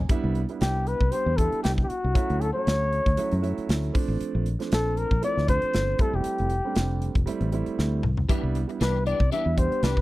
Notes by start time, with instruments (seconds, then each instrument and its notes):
0.09 grand piano G3 B3 D4 E4, muted fingered electric bass stroke, kick, closed hi-hat
0.24 fingered electric bass C2
0.35 closed hi-hat
0.49 grand piano G3 B3 D4 E4, closed hi-hat
0.61 fingered electric bass C2, muted trumpet G4, snare, closed hi-hat
0.87 muted trumpet B4, closed hi-hat
1.01 fingered electric bass C2, kick
1.11 grand piano G3 B3 D4 G4, muted trumpet C5, closed hi-hat
1.26 fingered electric bass E2
1.37 grand piano G3 B3 D4 E4, muted trumpet A4, kick, closed hi-hat
1.52 muted fingered electric bass stroke, closed hi-hat
1.64 fingered electric bass C2, muted trumpet G4, snare, closed hi-hat
1.78 kick
1.84 muted trumpet G4
1.89 muted trumpet F#4, muted fingered electric bass stroke, closed hi-hat
2.03 fingered electric bass C2, grand piano D4 G4
2.14 grand piano F#3 A3 C#4 E4, muted fingered electric bass stroke, kick, closed hi-hat
2.30 fingered electric bass D2, closed hi-hat
2.41 muted trumpet A4, closed hi-hat
2.54 grand piano F#3 A3 C#4 F#4, muted trumpet C#5
2.67 fingered electric bass D2, snare, closed hi-hat
2.93 closed hi-hat
3.06 fingered electric bass D2, kick, closed hi-hat
3.17 grand piano F#3 A3 C#4 E4, closed hi-hat
3.31 fingered electric bass F#2, closed hi-hat
3.42 grand piano F#3 A3 C#4 E4, closed hi-hat
3.58 muted fingered electric bass stroke, closed hi-hat
3.69 fingered electric bass D2, snare, closed hi-hat
3.83 closed hi-hat
3.93 grand piano F3 A3 C4 D4, kick, open hi-hat
4.08 fingered electric bass A1
4.21 muted fingered electric bass stroke, closed hi-hat
4.35 fingered electric bass A#1
4.46 closed hi-hat
4.59 grand piano F3 A3 C4 D4, snare, closed hi-hat
4.72 fingered electric bass A#1, muted trumpet A4, snare, closed hi-hat
4.97 muted trumpet A#4, closed hi-hat
5.11 fingered electric bass A#1, kick
5.22 grand piano F3 A3 C4 E4, muted trumpet D5, closed hi-hat
5.37 fingered electric bass D2, snare
5.47 grand piano F3 A3 C4 D4, muted trumpet C5, kick, closed hi-hat
5.62 muted fingered electric bass stroke, closed hi-hat
5.74 fingered electric bass G1, snare, closed hi-hat
5.99 grand piano G3 A3 C4 E4, muted trumpet A4, kick, closed hi-hat
6.13 fingered electric bass E1, muted trumpet G4
6.24 muted fingered electric bass stroke, closed hi-hat
6.38 fingered electric bass F1, closed hi-hat
6.50 closed hi-hat
6.65 grand piano G3 A3 C4 D4
6.75 fingered electric bass F1, snare, closed hi-hat
7.02 closed hi-hat
7.15 fingered electric bass F1, kick, closed hi-hat
7.26 grand piano G3 A3 C4 E4, closed hi-hat
7.41 fingered electric bass A1, closed hi-hat
7.52 grand piano G3 A3 C4 E4, closed hi-hat
7.66 closed hi-hat
7.79 fingered electric bass D2, snare
8.03 fingered electric bass C2, mid tom
8.17 grand piano C4 E4, floor tom
8.29 clean electric guitar E3 B3 D4 G4, grand piano G3 B3 D4 E4, muted fingered electric bass stroke, kick, closed hi-hat
8.43 fingered electric bass C2, muted clean electric guitar stroke
8.55 muted clean electric guitar stroke, closed hi-hat
8.68 grand piano G3 B3 D4 E4, muted clean electric guitar stroke, closed hi-hat
8.81 fingered electric bass C2, clean electric guitar E3 B3 D4 G4, muted trumpet B4, snare, closed hi-hat
9.06 clean electric guitar E3 B3 D4 G4, muted trumpet D5, closed hi-hat
9.20 fingered electric bass C2, muted clean electric guitar stroke, kick
9.32 clean electric guitar E3 B3 D4 G4, grand piano G3 B3 D4 E4, muted trumpet E5, closed hi-hat
9.45 fingered electric bass E2, muted clean electric guitar stroke
9.56 grand piano G3 B3 D4 G4, muted trumpet C5, muted clean electric guitar stroke, kick, closed hi-hat
9.72 muted fingered electric bass stroke, closed hi-hat
9.83 fingered electric bass C2, clean electric guitar E3 B3 D4 G4, muted trumpet B4, snare, closed hi-hat
9.97 muted clean electric guitar stroke, kick